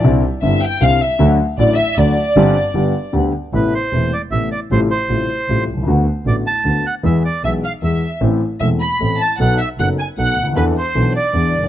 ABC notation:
X:1
M:3/4
L:1/16
Q:1/4=154
K:Gmix
V:1 name="Bandoneon"
z12 | z12 | z12 | [K:Am] B2 c4 d2 e2 d2 |
c2 c8 z2 | z4 d2 a4 ^f2 | e2 d2 e2 f2 e3 z | z4 e2 b4 a2 |
^f2 e2 f2 ^g2 f3 z | B2 c4 d4- d z |]
V:2 name="Violin section"
z4 e2 g2 f2 e2 | z4 d2 e2 d4- | d8 z4 | [K:Am] z12 |
z12 | z12 | z4 e2 f2 e3 z | z4 e2 b4 a2 |
^f2 e2 f2 ^g2 f3 z | B2 c4 d4- d d |]
V:3 name="Grand piano" clef=bass
[C,,C,D,G,CE]2 z2 [G,,,G,,D,G,CE]2 z2 [C,,C,D,G,CE]2 z2 | [D,,D,^F,A,^F]2 z2 [A,,,A,,D,F,A,F]2 z2 [D,,D,F,A,F]2 z2 | [G,,,G,,D,G,CG]2 z2 [G,,,G,,D,G,B,G]2 z2 [D,,D,G,B,G]2 z2 | [K:Am] [A,,,A,,C,A,B,E]2 z2 [E,,,E,,C,A,B,E]2 z2 [A,,,A,,C,A,B,E]2 z2 |
[A,,,A,,C,G,A,F]2 z2 [A,,,A,,C,G,A,F]2 z2 [A,,,A,,C,G,A,F]2 z/2 B,,,/2 C,,/2 ^C,,/2 | [D,,D,A,B,^F]2 z2 [A,,,A,,D,A,B,F]2 z2 [D,,D,A,B,F]2 z2 | [E,,E,^G,B,^G]2 z2 [B,,,B,,E,G,B,G]2 z2 [E,,E,G,B,G]2 z2 | [A,,,A,,E,A,CA]2 z2 [E,,,E,,E,A,CA]2 z2 [A,,,A,,E,A,CA]2 z2 |
[B,,,B,,^F,B,^DA]2 z2 [^F,,,^F,,F,B,DA]2 z2 [B,,,B,,F,B,DA]2 z/2 ^C,,/2 =D,,/2 ^D,,/2 | [E,,E,B,DA]2 z2 [B,,,B,,E,B,DA]2 z2 [E,,E,B,D^G]2 z/2 ^F,,,/2 =G,,,/2 z/2 |]
V:4 name="Double bass" clef=bass
C,,2 z2 G,,,2 z2 C,,2 z2 | D,,2 z2 A,,,2 z2 D,,2 z2 | G,,,2 z2 G,,,2 z2 D,,2 z2 | [K:Am] A,,,2 z2 E,,,2 z2 A,,,2 z2 |
A,,,2 z2 A,,,2 z2 A,,,2 C,,2 | D,,2 z2 A,,,2 z2 D,,2 z2 | E,,2 z2 B,,,2 z2 E,,2 z2 | A,,,2 z2 E,,,2 z2 A,,,2 z2 |
B,,,2 z2 ^F,,,2 z2 B,,,2 D,,2 | E,,2 z2 B,,,2 z2 E,,2 G,,,2 |]